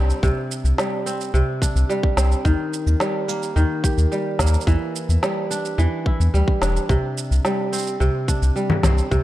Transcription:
Already playing: sub bass C2, kora C3 G3 C4 D4
0.10 shaker
0.23 sub bass C2, kora C3, kick, shaker
0.51 shaker
0.64 sub bass C2, shaker
0.78 kora G3, snare, shaker
1.06 kora C4, shaker
1.21 shaker
1.34 sub bass C2, kora C3, shaker
1.61 kora D4, kick, shaker
1.75 sub bass C2, shaker
1.89 kora G3, shaker
2.03 kick
2.17 sub bass C2, kora C4, snare, shaker
2.32 shaker
2.45 sub bass D#2, kora D#3, kick, shaker
2.73 shaker
2.87 sub bass D#2, shaker
3.00 kora G3, snare, shaker
3.28 kora A#3, shaker
3.43 shaker
3.56 sub bass D#2, kora D#3, shaker
3.84 kora G4, kick, shaker
3.98 sub bass D#2, shaker
4.12 kora G3, shaker
4.39 sub bass D#2, kora A#3, kick, snare, shaker
4.47 shaker
4.54 shaker
4.61 shaker
4.67 sub bass E2, kora E3, kick, shaker
4.96 shaker
5.09 sub bass E2, shaker
5.23 kora G3, snare, shaker
5.51 kora D4, shaker
5.65 shaker
5.78 sub bass E2, kora E3, shaker
6.06 kora E4, kick
6.20 sub bass E2, shaker
6.34 sub bass D2, kora G3, shaker
6.48 kick
6.62 sub bass E1, kora D4, snare, shaker
6.77 shaker
6.89 sub bass C2, kora C3, kick, shaker
7.18 shaker
7.31 sub bass C2, shaker
7.45 kora G3, snare, shaker
7.72 kora C4, shaker
7.76 shaker
7.78 shaker
7.81 shaker
7.83 shaker
7.85 shaker
7.87 shaker
8.00 sub bass C2, kora C3, shaker
8.28 kora D4, kick, shaker
8.42 sub bass C2, shaker
8.56 kora G3, shaker
8.70 low conga
8.83 sub bass C2, kora C4, kick, snare, low conga, shaker
8.98 shaker
9.11 sub bass C2, kora C3, kick, shaker

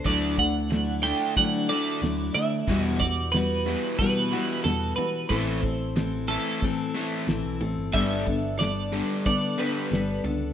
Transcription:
0.05 picked electric bass D2, steel-string acoustic guitar D3 F#3 A3 D4 E4, overdriven electric guitar D3 A3 D4, clean electric guitar D5, kick, open hi-hat
0.37 overdriven electric guitar D3 A3, steel-string acoustic guitar A3 D4 E4, clean electric guitar F#5, kick, open hi-hat
0.70 overdriven electric guitar D3 A3, steel-string acoustic guitar F#3 A3 D4 E4, snare, open hi-hat
1.03 overdriven electric guitar D3 A3 D4, steel-string acoustic guitar A3 D4 E4, clean electric guitar G5, open hi-hat
1.36 overdriven electric guitar D3 A3, steel-string acoustic guitar D3 F#3 A3 D4 E4, clean electric guitar F#5, kick, open hi-hat
1.69 overdriven electric guitar D3 A3 D4, steel-string acoustic guitar A3 D4 E4, clean electric guitar D5, open hi-hat
2.02 picked electric bass D2, overdriven electric guitar D3 A3, steel-string acoustic guitar F#3 A3 D4 E4, snare, open hi-hat
2.35 picked electric bass D3, overdriven electric guitar D3 A3, steel-string acoustic guitar A3 D4 E4, clean electric guitar E5, open hi-hat
2.68 picked electric bass E2, overdriven electric guitar E2 B2 E3, steel-string acoustic guitar E2 B2 G3 B3 E4 F#4, kick, open hi-hat
2.86 clean electric guitar D5
3.00 overdriven electric guitar E2 B2, steel-string acoustic guitar G3 B3 E4 F#4, clean electric guitar D5, kick, open hi-hat
3.32 overdriven electric guitar E2 B2, steel-string acoustic guitar G3 B3 E4 F#4, clean electric guitar B4, snare, open hi-hat
3.66 overdriven electric guitar E2 B2 E3, steel-string acoustic guitar G3 B3 E4 F#4, open hi-hat
3.99 overdriven electric guitar E2 B2, steel-string acoustic guitar E2 B2 G3 B3 E4 F#4, clean electric guitar B4, kick, open hi-hat
4.31 overdriven electric guitar E2 B2 E3, steel-string acoustic guitar G3 B3 E4 F#4, open hi-hat
4.64 overdriven electric guitar E2 B2, picked electric bass E2, steel-string acoustic guitar G3 B3 E4 F#4, clean electric guitar A4, snare, open hi-hat
4.96 overdriven electric guitar E2 B2, picked electric bass E3, steel-string acoustic guitar G3 B3 E4 F#4, clean electric guitar B4, open hi-hat
5.29 picked electric bass A1, overdriven electric guitar A2 E3 A3, steel-string acoustic guitar A2 E3 C4 E4 A4, clean electric guitar C5, kick, open hi-hat
5.63 overdriven electric guitar A2 E3, steel-string acoustic guitar C4 E4 A4, kick, open hi-hat
5.96 overdriven electric guitar A2 E3, steel-string acoustic guitar E3 C4 E4 A4, snare, open hi-hat
6.28 overdriven electric guitar A2 E3 A3, steel-string acoustic guitar C4 E4 A4, clean electric guitar A4, open hi-hat
6.62 overdriven electric guitar A2 E3, steel-string acoustic guitar A2 E3 C4 E4 A4, kick, open hi-hat
6.94 overdriven electric guitar A2 E3 A3, steel-string acoustic guitar C4 E4 A4, open hi-hat
7.27 picked electric bass A1, overdriven electric guitar A2 E3, steel-string acoustic guitar E3 C4 E4 A4, snare, open hi-hat
7.45 picked electric bass B1
7.61 picked electric bass A1, overdriven electric guitar A2 E3, steel-string acoustic guitar C4 E4 A4, open hi-hat
7.77 picked electric bass G1
7.93 picked electric bass G1, overdriven electric guitar G2 D3 G3, steel-string acoustic guitar G3 B3 D4 A4, clean electric guitar E5, kick, open hi-hat
8.26 overdriven electric guitar G2 D3, steel-string acoustic guitar B3 D4 A4, kick, open hi-hat
8.59 overdriven electric guitar G2 D3, steel-string acoustic guitar G3 B3 D4 A4, clean electric guitar D5, snare, open hi-hat
8.92 overdriven electric guitar G2 D3 G3, steel-string acoustic guitar B3 D4 A4, open hi-hat
9.25 overdriven electric guitar G2 D3, steel-string acoustic guitar G3 B3 D4 A4, clean electric guitar D5, kick, open hi-hat
9.58 overdriven electric guitar G2 D3 G3, steel-string acoustic guitar B3 D4 A4, clean electric guitar B4, open hi-hat
9.90 picked electric bass G1, overdriven electric guitar G2 D3, steel-string acoustic guitar G3 B3 D4 A4, snare, open hi-hat
10.24 picked electric bass C#2, overdriven electric guitar G2 D3, steel-string acoustic guitar B3 D4 A4, open hi-hat

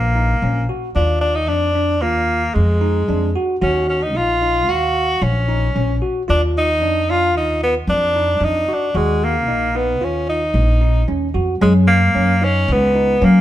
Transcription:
Already playing: upright bass A#1, tenor saxophone A#3
0.16 tine electric piano D#4
0.42 upright bass A#1, tine electric piano C#4
0.69 tine electric piano F#4
0.95 upright bass D#2, tenor saxophone D4, tine electric piano F4
1.21 tenor saxophone D4
1.35 tenor saxophone D#4
1.48 upright bass F2, tenor saxophone D4, tine electric piano D4
1.75 tine electric piano D4
2.02 upright bass D#2, tenor saxophone A#3, tine electric piano F4
2.54 upright bass F2, tenor saxophone G#3
2.81 tine electric piano D#4
3.08 upright bass F2, tine electric piano D4
3.36 tine electric piano F#4
3.62 upright bass D#2, tenor saxophone C#4, tine electric piano F#4
3.89 tenor saxophone C#4
4.02 tenor saxophone D#4
4.15 upright bass A#1, tine electric piano D#4, tenor saxophone F4
4.42 tine electric piano D#4
4.69 upright bass D#2, tenor saxophone F#4, tine electric piano F5
5.22 upright bass A#1, tenor saxophone C#4
5.48 tine electric piano D#4
5.76 upright bass A#1, tine electric piano C#4
6.02 tine electric piano F#4
6.28 upright bass D#2, tenor saxophone D4, tine electric piano F4
6.58 tenor saxophone D#4
6.82 upright bass F2, tine electric piano D4
7.09 tine electric piano D4, tenor saxophone F4
7.34 upright bass D#2, tenor saxophone D#4, tine electric piano F4
7.63 tenor saxophone B3
7.87 upright bass F2, tenor saxophone D4
8.16 tine electric piano D#4
8.40 upright bass F2, tine electric piano D4, tenor saxophone D#4
8.68 tine electric piano F#4
8.73 tenor saxophone D4
8.95 upright bass D#2, tenor saxophone G#3, tine electric piano F#4
9.24 tenor saxophone A#3
9.47 upright bass A#1, tine electric piano D#4
9.75 tenor saxophone B3, tine electric piano D#4
10.01 upright bass D#2, tenor saxophone C#4, tine electric piano F4
10.29 tenor saxophone D#4
10.54 upright bass A#1
10.81 tine electric piano D#4
11.08 upright bass D#2, tine electric piano C#4
11.34 upright bass F2, tine electric piano F#4
11.61 upright bass F#2, tenor saxophone G#3, tine electric piano C#4
11.88 tenor saxophone A#3
12.15 upright bass F#2, tine electric piano C#4
12.42 tenor saxophone C#4, tine electric piano D#4
12.68 upright bass C#2, tenor saxophone B3
12.95 tine electric piano D#4
13.22 upright bass F#3, tenor saxophone A#3, tine electric piano C#4

